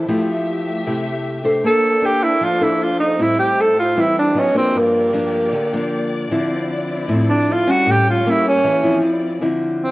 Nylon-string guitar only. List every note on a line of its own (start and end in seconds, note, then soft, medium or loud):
0.08 0.84 F3 medium
0.08 0.83 A3 medium
0.08 0.83 E4 medium
0.08 0.83 G4 medium
0.86 1.62 C3 medium
0.86 1.42 A3 medium
0.86 1.42 E4 soft
0.86 1.42 G4 medium
1.44 1.99 D4 medium
1.44 2.00 A4 medium
1.44 2.00 C5 medium
1.64 2.40 A#3 medium
2.02 2.58 D4 medium
2.02 2.58 A4 medium
2.02 2.58 C5 medium
2.41 3.17 F3 medium
2.61 3.16 D4 medium
2.61 3.17 A4 medium
2.61 3.17 C5 medium
3.18 3.95 A2 medium
3.18 3.71 G3 medium
3.18 3.72 C4 medium
3.18 3.72 E4 medium
3.96 4.34 E3 medium
3.96 4.34 G3 soft
3.96 4.34 C4 medium
3.96 4.35 E4 medium
4.34 4.52 F#3 medium
4.34 4.52 B3 medium
4.34 4.52 D#4 medium
4.54 5.10 F3 medium
4.54 5.10 A#3 medium
4.54 5.11 D4 medium
4.74 5.50 G2 medium
5.13 5.52 F3 medium
5.13 5.52 A#3 medium
5.13 5.53 D4 medium
5.52 6.28 D3 medium
5.73 6.28 F3 medium
5.73 6.28 A#3 medium
5.73 6.28 D4 medium
6.31 7.07 D3 medium
6.31 7.05 F3 medium
6.31 7.06 C4 medium
6.31 7.06 E4 medium
7.08 7.84 A2 medium
7.08 7.63 F3 medium
7.08 7.64 C4 medium
7.08 7.64 E4 medium
7.67 8.22 G3 medium
7.67 8.22 C#4 medium
7.86 8.62 A2 medium
8.25 8.64 G3 medium
8.25 8.64 A#3 medium
8.25 8.64 C#4 medium
8.64 9.01 E3 medium
8.83 9.38 F3 medium
8.83 9.38 C4 medium
8.83 9.39 E4 medium
9.41 9.91 D3 medium
9.41 9.91 F3 medium
9.41 9.91 C4 medium
9.41 9.91 E4 medium